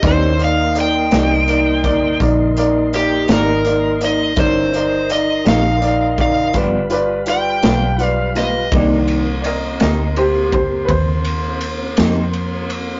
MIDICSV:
0, 0, Header, 1, 7, 480
1, 0, Start_track
1, 0, Key_signature, -3, "minor"
1, 0, Tempo, 723676
1, 25, Time_signature, 12, 3, 24, 8
1, 8622, End_track
2, 0, Start_track
2, 0, Title_t, "Electric slide guitar"
2, 0, Program_c, 0, 29
2, 46, Note_on_c, 0, 72, 83
2, 269, Note_off_c, 0, 72, 0
2, 294, Note_on_c, 0, 77, 78
2, 513, Note_off_c, 0, 77, 0
2, 536, Note_on_c, 0, 79, 96
2, 1454, Note_off_c, 0, 79, 0
2, 1961, Note_on_c, 0, 67, 104
2, 2186, Note_off_c, 0, 67, 0
2, 2197, Note_on_c, 0, 70, 74
2, 2657, Note_off_c, 0, 70, 0
2, 2684, Note_on_c, 0, 75, 97
2, 2907, Note_off_c, 0, 75, 0
2, 2914, Note_on_c, 0, 72, 91
2, 3375, Note_off_c, 0, 72, 0
2, 3394, Note_on_c, 0, 75, 84
2, 3623, Note_off_c, 0, 75, 0
2, 3637, Note_on_c, 0, 77, 83
2, 4097, Note_off_c, 0, 77, 0
2, 4120, Note_on_c, 0, 77, 105
2, 4345, Note_off_c, 0, 77, 0
2, 4839, Note_on_c, 0, 79, 94
2, 5336, Note_off_c, 0, 79, 0
2, 5336, Note_on_c, 0, 77, 94
2, 5531, Note_off_c, 0, 77, 0
2, 5560, Note_on_c, 0, 75, 97
2, 5786, Note_off_c, 0, 75, 0
2, 8622, End_track
3, 0, Start_track
3, 0, Title_t, "Upright piano"
3, 0, Program_c, 1, 0
3, 5, Note_on_c, 1, 63, 63
3, 12, Note_on_c, 1, 70, 62
3, 17, Note_on_c, 1, 74, 70
3, 195, Note_off_c, 1, 63, 0
3, 199, Note_off_c, 1, 70, 0
3, 201, Note_off_c, 1, 74, 0
3, 251, Note_on_c, 1, 63, 51
3, 254, Note_on_c, 1, 70, 47
3, 257, Note_on_c, 1, 74, 46
3, 438, Note_off_c, 1, 63, 0
3, 440, Note_off_c, 1, 70, 0
3, 441, Note_off_c, 1, 74, 0
3, 489, Note_on_c, 1, 63, 50
3, 491, Note_on_c, 1, 70, 48
3, 498, Note_on_c, 1, 74, 51
3, 677, Note_off_c, 1, 63, 0
3, 678, Note_off_c, 1, 70, 0
3, 682, Note_off_c, 1, 74, 0
3, 730, Note_on_c, 1, 63, 54
3, 738, Note_on_c, 1, 70, 43
3, 741, Note_on_c, 1, 74, 54
3, 918, Note_off_c, 1, 63, 0
3, 922, Note_off_c, 1, 70, 0
3, 923, Note_off_c, 1, 74, 0
3, 980, Note_on_c, 1, 63, 59
3, 981, Note_on_c, 1, 70, 54
3, 986, Note_on_c, 1, 74, 59
3, 1162, Note_off_c, 1, 63, 0
3, 1163, Note_off_c, 1, 70, 0
3, 1165, Note_off_c, 1, 74, 0
3, 1219, Note_on_c, 1, 63, 66
3, 1220, Note_on_c, 1, 70, 56
3, 1224, Note_on_c, 1, 74, 75
3, 1402, Note_off_c, 1, 63, 0
3, 1403, Note_off_c, 1, 70, 0
3, 1404, Note_off_c, 1, 74, 0
3, 1460, Note_on_c, 1, 63, 69
3, 1465, Note_on_c, 1, 70, 62
3, 1467, Note_on_c, 1, 74, 74
3, 1642, Note_off_c, 1, 63, 0
3, 1645, Note_off_c, 1, 70, 0
3, 1646, Note_off_c, 1, 74, 0
3, 1702, Note_on_c, 1, 63, 67
3, 1710, Note_on_c, 1, 70, 64
3, 1711, Note_on_c, 1, 74, 81
3, 1883, Note_off_c, 1, 63, 0
3, 1887, Note_off_c, 1, 70, 0
3, 1888, Note_off_c, 1, 74, 0
3, 1943, Note_on_c, 1, 63, 52
3, 1945, Note_on_c, 1, 70, 47
3, 1950, Note_on_c, 1, 74, 54
3, 2124, Note_off_c, 1, 63, 0
3, 2125, Note_off_c, 1, 70, 0
3, 2128, Note_off_c, 1, 74, 0
3, 2176, Note_on_c, 1, 63, 53
3, 2183, Note_on_c, 1, 70, 52
3, 2187, Note_on_c, 1, 74, 62
3, 2361, Note_off_c, 1, 63, 0
3, 2364, Note_off_c, 1, 70, 0
3, 2366, Note_off_c, 1, 74, 0
3, 2416, Note_on_c, 1, 63, 57
3, 2418, Note_on_c, 1, 70, 51
3, 2421, Note_on_c, 1, 74, 56
3, 2600, Note_off_c, 1, 63, 0
3, 2602, Note_off_c, 1, 70, 0
3, 2603, Note_off_c, 1, 74, 0
3, 2653, Note_on_c, 1, 63, 54
3, 2660, Note_on_c, 1, 70, 48
3, 2661, Note_on_c, 1, 74, 55
3, 2839, Note_off_c, 1, 63, 0
3, 2842, Note_off_c, 1, 70, 0
3, 2843, Note_off_c, 1, 74, 0
3, 2896, Note_on_c, 1, 63, 64
3, 2901, Note_on_c, 1, 70, 57
3, 2907, Note_on_c, 1, 74, 64
3, 3081, Note_off_c, 1, 63, 0
3, 3083, Note_off_c, 1, 70, 0
3, 3086, Note_off_c, 1, 74, 0
3, 3143, Note_on_c, 1, 63, 47
3, 3149, Note_on_c, 1, 70, 45
3, 3153, Note_on_c, 1, 74, 53
3, 3324, Note_off_c, 1, 63, 0
3, 3327, Note_off_c, 1, 70, 0
3, 3329, Note_off_c, 1, 74, 0
3, 3382, Note_on_c, 1, 63, 46
3, 3386, Note_on_c, 1, 70, 47
3, 3388, Note_on_c, 1, 74, 58
3, 3564, Note_off_c, 1, 63, 0
3, 3565, Note_off_c, 1, 70, 0
3, 3566, Note_off_c, 1, 74, 0
3, 3619, Note_on_c, 1, 63, 52
3, 3622, Note_on_c, 1, 70, 51
3, 3626, Note_on_c, 1, 75, 55
3, 3802, Note_off_c, 1, 63, 0
3, 3803, Note_off_c, 1, 70, 0
3, 3806, Note_off_c, 1, 75, 0
3, 3847, Note_on_c, 1, 63, 58
3, 3851, Note_on_c, 1, 70, 55
3, 3856, Note_on_c, 1, 74, 63
3, 4036, Note_off_c, 1, 63, 0
3, 4038, Note_off_c, 1, 70, 0
3, 4041, Note_off_c, 1, 74, 0
3, 4092, Note_on_c, 1, 63, 58
3, 4096, Note_on_c, 1, 70, 49
3, 4102, Note_on_c, 1, 74, 63
3, 4279, Note_off_c, 1, 63, 0
3, 4281, Note_off_c, 1, 70, 0
3, 4284, Note_off_c, 1, 74, 0
3, 4336, Note_on_c, 1, 65, 52
3, 4344, Note_on_c, 1, 71, 51
3, 4349, Note_on_c, 1, 74, 59
3, 4521, Note_off_c, 1, 65, 0
3, 4525, Note_off_c, 1, 71, 0
3, 4527, Note_off_c, 1, 74, 0
3, 4577, Note_on_c, 1, 65, 68
3, 4581, Note_on_c, 1, 71, 68
3, 4589, Note_on_c, 1, 74, 76
3, 4761, Note_off_c, 1, 65, 0
3, 4763, Note_off_c, 1, 71, 0
3, 4767, Note_off_c, 1, 74, 0
3, 4821, Note_on_c, 1, 65, 56
3, 4824, Note_on_c, 1, 74, 59
3, 4826, Note_on_c, 1, 71, 52
3, 5003, Note_off_c, 1, 65, 0
3, 5005, Note_off_c, 1, 74, 0
3, 5006, Note_off_c, 1, 71, 0
3, 5059, Note_on_c, 1, 65, 51
3, 5067, Note_on_c, 1, 71, 51
3, 5067, Note_on_c, 1, 77, 58
3, 5242, Note_off_c, 1, 65, 0
3, 5246, Note_off_c, 1, 71, 0
3, 5246, Note_off_c, 1, 77, 0
3, 5294, Note_on_c, 1, 65, 51
3, 5301, Note_on_c, 1, 71, 49
3, 5308, Note_on_c, 1, 74, 60
3, 5480, Note_off_c, 1, 65, 0
3, 5483, Note_off_c, 1, 71, 0
3, 5487, Note_off_c, 1, 74, 0
3, 5539, Note_on_c, 1, 65, 54
3, 5548, Note_on_c, 1, 71, 51
3, 5550, Note_on_c, 1, 77, 54
3, 5722, Note_off_c, 1, 65, 0
3, 5727, Note_off_c, 1, 71, 0
3, 5728, Note_off_c, 1, 77, 0
3, 5786, Note_on_c, 1, 51, 43
3, 5792, Note_on_c, 1, 58, 42
3, 5797, Note_on_c, 1, 62, 48
3, 6105, Note_off_c, 1, 51, 0
3, 6108, Note_off_c, 1, 58, 0
3, 6111, Note_off_c, 1, 62, 0
3, 6247, Note_on_c, 1, 74, 46
3, 6272, Note_on_c, 1, 70, 55
3, 6274, Note_off_c, 1, 74, 0
3, 6275, Note_on_c, 1, 75, 70
3, 6493, Note_off_c, 1, 70, 0
3, 6503, Note_off_c, 1, 75, 0
3, 6515, Note_on_c, 1, 70, 52
3, 6515, Note_on_c, 1, 75, 60
3, 6734, Note_off_c, 1, 70, 0
3, 6743, Note_off_c, 1, 75, 0
3, 6746, Note_on_c, 1, 67, 66
3, 6750, Note_on_c, 1, 72, 73
3, 6969, Note_off_c, 1, 67, 0
3, 6981, Note_off_c, 1, 72, 0
3, 6986, Note_on_c, 1, 67, 51
3, 6991, Note_on_c, 1, 72, 68
3, 7197, Note_on_c, 1, 71, 49
3, 7209, Note_off_c, 1, 67, 0
3, 7218, Note_off_c, 1, 72, 0
3, 7226, Note_off_c, 1, 71, 0
3, 7228, Note_on_c, 1, 72, 78
3, 8622, Note_off_c, 1, 72, 0
3, 8622, End_track
4, 0, Start_track
4, 0, Title_t, "Tonewheel organ"
4, 0, Program_c, 2, 16
4, 9, Note_on_c, 2, 58, 57
4, 9, Note_on_c, 2, 61, 57
4, 11, Note_on_c, 2, 64, 54
4, 250, Note_off_c, 2, 58, 0
4, 257, Note_off_c, 2, 61, 0
4, 258, Note_off_c, 2, 64, 0
4, 258, Note_on_c, 2, 58, 62
4, 260, Note_on_c, 2, 63, 66
4, 261, Note_on_c, 2, 72, 73
4, 2875, Note_off_c, 2, 58, 0
4, 2876, Note_off_c, 2, 63, 0
4, 2877, Note_off_c, 2, 72, 0
4, 2895, Note_on_c, 2, 61, 59
4, 2896, Note_on_c, 2, 64, 57
4, 2897, Note_on_c, 2, 70, 60
4, 3140, Note_off_c, 2, 61, 0
4, 3141, Note_off_c, 2, 64, 0
4, 3141, Note_off_c, 2, 70, 0
4, 3146, Note_on_c, 2, 63, 72
4, 3154, Note_on_c, 2, 72, 64
4, 3155, Note_on_c, 2, 70, 73
4, 4334, Note_off_c, 2, 63, 0
4, 4336, Note_on_c, 2, 65, 78
4, 4337, Note_on_c, 2, 55, 76
4, 4338, Note_off_c, 2, 70, 0
4, 4338, Note_off_c, 2, 72, 0
4, 4338, Note_on_c, 2, 71, 69
4, 5766, Note_off_c, 2, 65, 0
4, 5767, Note_off_c, 2, 55, 0
4, 5767, Note_off_c, 2, 71, 0
4, 5780, Note_on_c, 2, 60, 53
4, 5788, Note_on_c, 2, 72, 54
4, 5794, Note_on_c, 2, 58, 50
4, 8622, Note_off_c, 2, 58, 0
4, 8622, Note_off_c, 2, 60, 0
4, 8622, Note_off_c, 2, 72, 0
4, 8622, End_track
5, 0, Start_track
5, 0, Title_t, "Clean electric guitar"
5, 0, Program_c, 3, 27
5, 27, Note_on_c, 3, 48, 75
5, 30, Note_on_c, 3, 58, 74
5, 33, Note_on_c, 3, 63, 74
5, 34, Note_on_c, 3, 67, 69
5, 170, Note_off_c, 3, 48, 0
5, 172, Note_off_c, 3, 58, 0
5, 173, Note_off_c, 3, 63, 0
5, 173, Note_off_c, 3, 67, 0
5, 748, Note_on_c, 3, 67, 72
5, 754, Note_on_c, 3, 58, 55
5, 754, Note_on_c, 3, 63, 62
5, 759, Note_on_c, 3, 48, 53
5, 890, Note_off_c, 3, 67, 0
5, 894, Note_off_c, 3, 58, 0
5, 894, Note_off_c, 3, 63, 0
5, 896, Note_off_c, 3, 48, 0
5, 2177, Note_on_c, 3, 67, 69
5, 2189, Note_on_c, 3, 58, 55
5, 2189, Note_on_c, 3, 63, 59
5, 2196, Note_on_c, 3, 48, 50
5, 2325, Note_off_c, 3, 67, 0
5, 2331, Note_off_c, 3, 58, 0
5, 2331, Note_off_c, 3, 63, 0
5, 2334, Note_off_c, 3, 48, 0
5, 3613, Note_on_c, 3, 67, 70
5, 3624, Note_on_c, 3, 63, 60
5, 3628, Note_on_c, 3, 58, 55
5, 3634, Note_on_c, 3, 48, 59
5, 3763, Note_off_c, 3, 67, 0
5, 3769, Note_off_c, 3, 63, 0
5, 3771, Note_off_c, 3, 58, 0
5, 3773, Note_off_c, 3, 48, 0
5, 4350, Note_on_c, 3, 43, 75
5, 4354, Note_on_c, 3, 53, 73
5, 4360, Note_on_c, 3, 62, 81
5, 4361, Note_on_c, 3, 59, 70
5, 4491, Note_off_c, 3, 43, 0
5, 4494, Note_off_c, 3, 53, 0
5, 4497, Note_off_c, 3, 59, 0
5, 4497, Note_off_c, 3, 62, 0
5, 5065, Note_on_c, 3, 62, 69
5, 5066, Note_on_c, 3, 59, 61
5, 5070, Note_on_c, 3, 53, 53
5, 5073, Note_on_c, 3, 43, 53
5, 5209, Note_off_c, 3, 62, 0
5, 5210, Note_off_c, 3, 59, 0
5, 5212, Note_off_c, 3, 53, 0
5, 5213, Note_off_c, 3, 43, 0
5, 5795, Note_on_c, 3, 48, 66
5, 5802, Note_on_c, 3, 58, 65
5, 5802, Note_on_c, 3, 63, 70
5, 5809, Note_on_c, 3, 67, 65
5, 5934, Note_off_c, 3, 48, 0
5, 5938, Note_off_c, 3, 58, 0
5, 5938, Note_off_c, 3, 63, 0
5, 5942, Note_off_c, 3, 67, 0
5, 6506, Note_on_c, 3, 67, 61
5, 6510, Note_on_c, 3, 63, 61
5, 6515, Note_on_c, 3, 58, 53
5, 6517, Note_on_c, 3, 48, 52
5, 6650, Note_off_c, 3, 67, 0
5, 6652, Note_off_c, 3, 63, 0
5, 6655, Note_off_c, 3, 58, 0
5, 6656, Note_off_c, 3, 48, 0
5, 7951, Note_on_c, 3, 67, 71
5, 7957, Note_on_c, 3, 63, 65
5, 7960, Note_on_c, 3, 58, 61
5, 7966, Note_on_c, 3, 48, 59
5, 8093, Note_off_c, 3, 67, 0
5, 8096, Note_off_c, 3, 63, 0
5, 8097, Note_off_c, 3, 58, 0
5, 8100, Note_off_c, 3, 48, 0
5, 8622, End_track
6, 0, Start_track
6, 0, Title_t, "Fingered electric bass"
6, 0, Program_c, 4, 33
6, 20, Note_on_c, 4, 39, 81
6, 721, Note_off_c, 4, 39, 0
6, 748, Note_on_c, 4, 36, 90
6, 1445, Note_off_c, 4, 36, 0
6, 1462, Note_on_c, 4, 34, 74
6, 2162, Note_off_c, 4, 34, 0
6, 2181, Note_on_c, 4, 32, 84
6, 2882, Note_off_c, 4, 32, 0
6, 2900, Note_on_c, 4, 31, 86
6, 3601, Note_off_c, 4, 31, 0
6, 3624, Note_on_c, 4, 34, 86
6, 4323, Note_off_c, 4, 34, 0
6, 4342, Note_on_c, 4, 31, 70
6, 5042, Note_off_c, 4, 31, 0
6, 5071, Note_on_c, 4, 35, 83
6, 5767, Note_off_c, 4, 35, 0
6, 5785, Note_on_c, 4, 36, 85
6, 6484, Note_off_c, 4, 36, 0
6, 6515, Note_on_c, 4, 38, 85
6, 7209, Note_off_c, 4, 38, 0
6, 7221, Note_on_c, 4, 39, 63
6, 7922, Note_off_c, 4, 39, 0
6, 7952, Note_on_c, 4, 41, 67
6, 8622, Note_off_c, 4, 41, 0
6, 8622, End_track
7, 0, Start_track
7, 0, Title_t, "Drums"
7, 19, Note_on_c, 9, 36, 124
7, 20, Note_on_c, 9, 42, 79
7, 86, Note_off_c, 9, 36, 0
7, 87, Note_off_c, 9, 42, 0
7, 261, Note_on_c, 9, 42, 48
7, 327, Note_off_c, 9, 42, 0
7, 498, Note_on_c, 9, 42, 58
7, 565, Note_off_c, 9, 42, 0
7, 737, Note_on_c, 9, 42, 62
7, 744, Note_on_c, 9, 38, 82
7, 803, Note_off_c, 9, 42, 0
7, 811, Note_off_c, 9, 38, 0
7, 980, Note_on_c, 9, 42, 53
7, 1046, Note_off_c, 9, 42, 0
7, 1220, Note_on_c, 9, 36, 64
7, 1220, Note_on_c, 9, 42, 54
7, 1286, Note_off_c, 9, 42, 0
7, 1287, Note_off_c, 9, 36, 0
7, 1461, Note_on_c, 9, 36, 77
7, 1464, Note_on_c, 9, 42, 65
7, 1527, Note_off_c, 9, 36, 0
7, 1530, Note_off_c, 9, 42, 0
7, 1702, Note_on_c, 9, 42, 58
7, 1769, Note_off_c, 9, 42, 0
7, 1944, Note_on_c, 9, 42, 66
7, 2010, Note_off_c, 9, 42, 0
7, 2176, Note_on_c, 9, 42, 82
7, 2183, Note_on_c, 9, 38, 106
7, 2242, Note_off_c, 9, 42, 0
7, 2250, Note_off_c, 9, 38, 0
7, 2418, Note_on_c, 9, 42, 57
7, 2485, Note_off_c, 9, 42, 0
7, 2658, Note_on_c, 9, 42, 63
7, 2724, Note_off_c, 9, 42, 0
7, 2894, Note_on_c, 9, 42, 82
7, 2899, Note_on_c, 9, 36, 116
7, 2960, Note_off_c, 9, 42, 0
7, 2965, Note_off_c, 9, 36, 0
7, 3140, Note_on_c, 9, 42, 57
7, 3206, Note_off_c, 9, 42, 0
7, 3379, Note_on_c, 9, 42, 59
7, 3445, Note_off_c, 9, 42, 0
7, 3619, Note_on_c, 9, 42, 68
7, 3627, Note_on_c, 9, 38, 82
7, 3686, Note_off_c, 9, 42, 0
7, 3693, Note_off_c, 9, 38, 0
7, 3859, Note_on_c, 9, 42, 52
7, 3925, Note_off_c, 9, 42, 0
7, 4097, Note_on_c, 9, 42, 49
7, 4100, Note_on_c, 9, 36, 76
7, 4164, Note_off_c, 9, 42, 0
7, 4166, Note_off_c, 9, 36, 0
7, 4335, Note_on_c, 9, 42, 70
7, 4339, Note_on_c, 9, 36, 72
7, 4401, Note_off_c, 9, 42, 0
7, 4405, Note_off_c, 9, 36, 0
7, 4576, Note_on_c, 9, 42, 54
7, 4642, Note_off_c, 9, 42, 0
7, 4815, Note_on_c, 9, 42, 63
7, 4881, Note_off_c, 9, 42, 0
7, 5058, Note_on_c, 9, 42, 81
7, 5065, Note_on_c, 9, 38, 104
7, 5124, Note_off_c, 9, 42, 0
7, 5132, Note_off_c, 9, 38, 0
7, 5299, Note_on_c, 9, 42, 51
7, 5366, Note_off_c, 9, 42, 0
7, 5541, Note_on_c, 9, 42, 59
7, 5548, Note_on_c, 9, 38, 32
7, 5607, Note_off_c, 9, 42, 0
7, 5614, Note_off_c, 9, 38, 0
7, 5782, Note_on_c, 9, 51, 94
7, 5783, Note_on_c, 9, 36, 115
7, 5848, Note_off_c, 9, 51, 0
7, 5850, Note_off_c, 9, 36, 0
7, 6020, Note_on_c, 9, 51, 56
7, 6086, Note_off_c, 9, 51, 0
7, 6261, Note_on_c, 9, 51, 58
7, 6328, Note_off_c, 9, 51, 0
7, 6499, Note_on_c, 9, 51, 72
7, 6506, Note_on_c, 9, 38, 82
7, 6565, Note_off_c, 9, 51, 0
7, 6572, Note_off_c, 9, 38, 0
7, 6741, Note_on_c, 9, 51, 54
7, 6807, Note_off_c, 9, 51, 0
7, 6979, Note_on_c, 9, 51, 47
7, 6981, Note_on_c, 9, 36, 66
7, 7045, Note_off_c, 9, 51, 0
7, 7047, Note_off_c, 9, 36, 0
7, 7220, Note_on_c, 9, 36, 68
7, 7220, Note_on_c, 9, 51, 61
7, 7287, Note_off_c, 9, 36, 0
7, 7287, Note_off_c, 9, 51, 0
7, 7458, Note_on_c, 9, 51, 51
7, 7524, Note_off_c, 9, 51, 0
7, 7697, Note_on_c, 9, 51, 54
7, 7764, Note_off_c, 9, 51, 0
7, 7938, Note_on_c, 9, 51, 80
7, 7945, Note_on_c, 9, 38, 98
7, 8004, Note_off_c, 9, 51, 0
7, 8011, Note_off_c, 9, 38, 0
7, 8180, Note_on_c, 9, 51, 43
7, 8247, Note_off_c, 9, 51, 0
7, 8421, Note_on_c, 9, 51, 55
7, 8488, Note_off_c, 9, 51, 0
7, 8622, End_track
0, 0, End_of_file